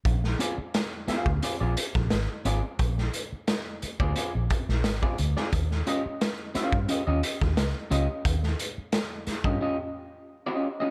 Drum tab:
HH |x-x-x-x-x-x-x-x-|x-x-x-x-x-x-x-x-|x-x-x-x-x-x-x-x-|x-x-x-x---------|
SD |-o--o-o----oo---|-o--o------oo--o|-o--o-o----oo---|-o--o-o---------|
BD |o------o---o----|o------o--o--o--|o------o---o----|o------o--------|